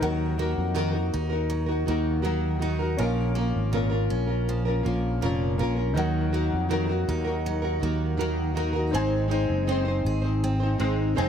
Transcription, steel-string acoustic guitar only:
0.00 0.74 F#3 medium
0.00 0.39 A#3 medium
0.39 1.88 A#3 medium
0.76 1.48 F#3 medium
1.14 2.61 D#4 medium
1.50 2.23 F#3 medium
1.88 3.35 A#3 medium
2.25 2.98 F#3 medium
2.62 3.07 D#4 medium
2.98 3.72 F3 medium
3.35 4.86 A#3 medium
3.73 4.47 F3 medium
4.10 5.58 C#4 medium
4.49 5.21 F3 medium
4.86 6.34 A#3 medium
5.22 5.97 F3 medium
5.59 6.04 C#4 medium
5.97 6.70 F#3 medium
6.34 7.82 A#3 medium
6.71 7.45 F#3 medium
7.09 8.56 D#4 medium
7.46 8.19 F#3 medium
7.83 8.94 A#3 medium
8.21 9.02 F#3 medium
8.57 9.31 D#4 medium
8.95 9.68 C4 medium
9.31 10.78 D#4 medium
9.69 10.43 C4 medium
10.06 11.29 G#4 medium
10.44 11.17 C4 medium
10.80 11.29 D#4 medium
11.18 11.29 C4 medium

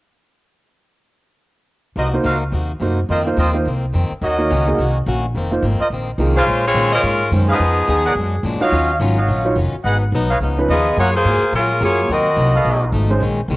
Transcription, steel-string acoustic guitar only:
1.96 2.14 C3 soft
1.96 2.15 A#3 soft
1.96 2.15 D#4 soft
1.96 2.16 F#4 soft
2.24 2.42 C3 medium
2.24 2.43 A#3 medium
2.24 2.43 D#4 medium
2.24 2.43 F#4 medium
2.52 2.71 C3 soft
2.52 2.71 A#3 soft
2.52 2.71 D#4 soft
2.52 2.72 F#4 soft
2.80 2.99 C3 medium
2.80 2.99 A#3 medium
2.80 2.99 D#4 medium
2.80 3.00 F#4 medium
3.09 3.27 F2 soft
3.09 3.28 D#3 medium
3.09 3.28 A#3 soft
3.09 3.29 C4 medium
3.37 3.55 F2 medium
3.37 3.56 D#3 medium
3.37 3.56 A#3 medium
3.37 3.56 C4 medium
3.65 3.84 F2 soft
3.65 3.84 D#3 soft
3.65 3.85 A#3 soft
3.65 3.85 C4 soft
3.93 4.11 F2 medium
3.93 4.12 D#3 medium
3.93 4.12 A#3 medium
3.93 4.13 C4 medium
4.22 4.40 D#3 soft
4.22 4.40 A#3 soft
4.22 4.41 C#4 medium
4.22 4.41 F#4 medium
4.50 4.68 D#3 medium
4.50 4.68 A#3 medium
4.50 4.69 C#4 medium
4.50 4.69 F#4 medium
4.78 4.96 D#3 soft
4.78 4.97 A#3 soft
4.78 4.97 C#4 soft
4.78 4.98 F#4 soft
5.07 5.25 D#3 medium
5.07 5.25 A#3 medium
5.07 5.25 C#4 medium
5.07 5.26 F#4 medium
5.35 5.53 F2 soft
5.35 5.53 D#3 medium
5.35 5.54 A#3 medium
5.35 5.54 C4 soft
5.63 5.81 F2 medium
5.63 5.81 D#3 medium
5.63 5.81 A#3 medium
5.63 5.82 C4 medium
5.91 6.09 F2 soft
5.91 6.10 D#3 soft
5.91 6.10 A#3 soft
5.91 6.10 C4 soft
6.19 6.37 F2 medium
6.19 6.37 D#3 medium
6.19 6.38 A#3 medium
6.19 6.38 C4 medium
6.46 6.65 A#2 soft
6.46 6.65 D#3 soft
6.46 6.66 G#3 soft
6.46 6.66 C#4 soft
6.76 6.93 A#2 medium
6.76 6.94 D#3 medium
6.76 6.94 G#3 medium
6.76 6.94 C#4 medium
7.02 7.21 A#2 soft
7.02 7.22 D#3 soft
7.02 7.22 G#3 soft
7.02 7.22 C#4 soft
7.31 7.49 A#2 medium
7.31 7.50 D#3 medium
7.31 7.50 G#3 medium
7.31 7.50 C#4 medium
7.59 7.77 F3 soft
7.59 7.78 B3 soft
7.59 7.79 D#4 soft
7.59 7.79 G#4 medium
7.88 8.06 F3 medium
7.88 8.06 B3 medium
7.88 8.06 D#4 medium
7.88 8.07 G#4 medium
8.16 8.34 A#2 soft
8.16 8.34 F#3 soft
8.16 8.35 G#3 soft
8.16 8.35 D4 medium
8.43 8.62 A#2 medium
8.43 8.62 F#3 medium
8.43 8.62 G#3 medium
8.43 8.63 D4 medium
8.71 8.90 D#3 soft
8.71 8.90 F#3 soft
8.71 8.90 C#4 medium
8.71 8.91 F4 medium
9.00 9.18 D#3 medium
9.00 9.19 F#3 medium
9.00 9.19 C#4 medium
9.00 9.19 F4 medium
9.27 9.46 D#3 soft
9.27 9.46 F#3 soft
9.27 9.47 C#4 soft
9.27 9.48 F4 soft
9.55 9.74 D#3 medium
9.55 9.74 F#3 medium
9.55 9.75 C#4 medium
9.55 9.75 F4 medium
9.84 10.02 G#2 soft
9.84 10.03 F#3 soft
9.84 10.03 B3 soft
9.84 10.04 D#4 medium
10.14 10.31 G#2 medium
10.14 10.32 F#3 medium
10.14 10.32 B3 medium
10.14 10.32 D#4 medium
10.41 10.59 C#3 soft
10.41 10.59 F3 soft
10.41 10.60 B3 soft
10.41 10.60 D#4 soft
10.70 10.88 C#3 medium
10.70 10.88 F3 medium
10.70 10.88 B3 medium
10.70 10.88 D#4 medium
10.97 11.15 F#3 soft
10.97 11.16 A#3 soft
10.97 11.16 F4 soft
10.97 11.16 G#4 medium
11.25 11.43 F#3 medium
11.25 11.44 A#3 medium
11.25 11.44 F4 medium
11.25 11.44 G#4 medium
11.53 11.71 F#3 soft
11.53 11.72 A#3 soft
11.53 11.72 F4 soft
11.53 11.73 G#4 soft
11.80 11.99 F#3 soft
11.80 11.99 A#3 medium
11.80 12.00 F4 medium
11.80 12.00 G#4 medium
12.08 12.27 C3 soft
12.08 12.27 F#3 soft
12.08 12.28 A#3 medium
12.08 12.28 D#4 soft
12.36 12.55 C3 medium
12.36 12.55 F#3 medium
12.36 12.56 A#3 medium
12.36 12.56 D#4 medium
12.65 12.83 B2 soft
12.65 12.84 F3 soft
12.65 12.84 A3 medium
12.65 12.84 D#4 soft
12.92 13.11 B2 medium
12.92 13.11 F3 medium
12.92 13.12 A3 medium
12.92 13.12 D#4 medium
13.21 13.39 A#2 medium
13.21 13.40 D#3 medium
13.21 13.40 G#3 medium
13.21 13.40 C#4 medium
13.49 13.57 A#2 medium
13.49 13.57 D#3 medium
13.49 13.57 G#3 medium
13.49 13.57 C#4 medium

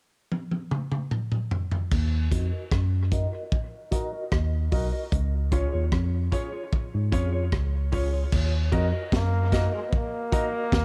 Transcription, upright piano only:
2.31 2.47 D#4 medium
2.31 2.47 F#4 medium
2.31 2.48 A#4 medium
2.31 2.48 D#5 medium
3.11 3.27 D#4 medium
3.11 3.28 F#4 medium
3.11 3.28 A#4 medium
3.11 3.28 D#5 loud
3.91 4.07 D#4 medium
3.91 4.08 F#4 medium
3.91 4.08 A#4 medium
3.91 4.08 D#5 loud
4.12 4.20 A#4 soft
4.12 4.20 D#5 soft
4.71 4.87 D#4 medium
4.71 4.88 F#4 medium
4.71 4.88 A#4 medium
4.71 4.88 D#5 medium
5.52 5.68 C#4 medium
5.52 5.68 F4 medium
5.52 5.68 G#4 medium
5.52 5.68 C#5 medium
6.32 6.48 C#4 medium
6.32 6.48 F4 medium
6.32 6.48 G#4 medium
6.32 6.48 C#5 loud
7.12 7.28 C#4 medium
7.12 7.28 F4 medium
7.12 7.28 G#4 medium
7.12 7.28 C#5 medium
7.33 7.40 G#4 soft
7.33 7.40 C#5 soft
7.92 8.08 C#4 medium
7.92 8.08 F4 medium
7.92 8.08 G#4 medium
7.92 8.08 C#5 medium
8.72 8.88 D#4 medium
8.72 8.88 F#4 medium
8.72 8.88 A#4 medium
8.72 8.88 D#5 medium
9.52 9.68 D#4 medium
9.52 9.68 F#4 medium
9.52 9.68 A#4 medium
9.52 9.68 D#5 loud
10.32 10.48 D#4 medium
10.32 10.48 F#4 medium
10.32 10.48 A#4 medium
10.32 10.48 D#5 loud

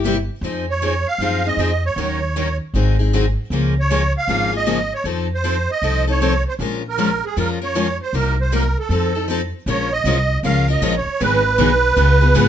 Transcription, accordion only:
0.70 1.07 C#5 medium
1.07 1.47 F5 medium
1.47 1.85 D#5 medium
1.85 2.57 C#5 medium
3.80 4.13 C#5 medium
4.18 4.53 F5 loud
4.57 4.93 D#5 medium
4.94 5.06 C#5 medium
5.34 5.71 C5 medium
5.71 6.07 D#5 medium
6.10 6.44 C#5 medium
6.48 6.54 C5 medium
6.89 7.25 A#4 medium
7.25 7.37 G#4 medium
7.40 7.50 A#4 medium
7.64 7.98 C#5 medium
8.02 8.15 C5 medium
8.17 8.38 A#4 medium
8.41 8.54 C5 medium
8.55 8.78 A#4 medium
8.79 9.26 A4 medium
9.69 9.93 C#5 medium
9.92 10.40 D#5 medium
10.45 10.68 F5 medium
10.71 10.96 D#5 medium
10.97 11.22 C#5 medium
11.21 12.48 B4 medium

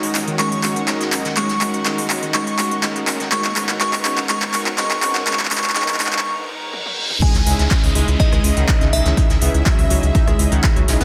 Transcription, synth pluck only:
0.03 0.10 G#3 medium
0.27 0.32 D#3 medium
0.39 0.51 G#3 loud
0.64 0.72 G#3 medium
0.88 0.96 G#3 medium
1.01 1.08 G#3 medium
1.25 1.29 D#3 medium
1.37 1.49 G#3 loud
1.61 1.69 G#3 medium
1.86 1.94 G#3 medium
1.98 2.06 G#3 medium
2.23 2.27 D#3 medium
2.35 2.46 G#3 loud
2.59 2.67 G#3 medium
2.83 2.91 G#3 medium
2.96 3.03 G#3 medium
3.20 3.25 D#3 medium
3.32 3.44 G#3 loud
3.56 3.64 G#3 medium
3.81 3.93 G#3 loud
4.05 4.13 G#3 medium
4.30 4.41 G#3 loud
4.54 4.62 G#3 medium
4.78 4.90 G#3 loud
5.03 5.11 G#3 medium
5.27 5.39 G#3 loud
5.51 5.63 G#3 loud
5.76 5.88 G#3 loud
6.00 6.12 G#3 loud
7.22 7.27 G#3 medium
7.22 7.27 G#4 medium
7.47 7.55 G#3 medium
7.47 7.55 G#4 medium
7.71 7.83 G#3 loud
7.71 7.83 G#4 medium
7.95 8.03 G#3 loud
7.95 8.03 G#4 medium
8.20 8.25 D#4 medium
8.20 8.25 D#5 medium
8.32 8.40 G#3 loud
8.32 8.40 G#4 medium
8.57 8.64 D#3 medium
8.57 8.64 D#4 medium
8.81 8.89 D#4 medium
8.81 8.89 D#5 medium
9.06 9.17 D#3 medium
9.06 9.16 D#4 medium
9.17 9.22 D#4 medium
9.17 9.22 D#5 medium
9.42 9.50 B3 medium
9.42 9.50 B4 medium
9.66 9.74 F#3 medium
9.66 9.74 F#4 medium
9.90 9.95 F#3 medium
9.90 9.95 F#4 medium
10.15 10.20 D#4 medium
10.15 10.20 D#5 medium
10.28 10.35 G#3 medium
10.28 10.35 G#4 medium
10.52 10.63 D#3 medium
10.52 10.63 D#4 medium
10.76 10.84 F#3 medium
10.76 10.84 F#4 medium
11.01 11.04 B3 loud
11.01 11.04 B4 medium

